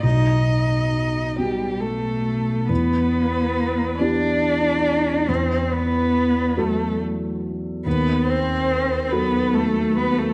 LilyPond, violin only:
\new Staff \with { instrumentName = "Violin" } { \time 6/8 \key e \minor \tempo 4. = 46 dis''4. g'8 a'4 | b'4. d''4. | c''8 b'4 a'8 r4 | b'8 c''4 b'8 a'8 b'16 a'16 | }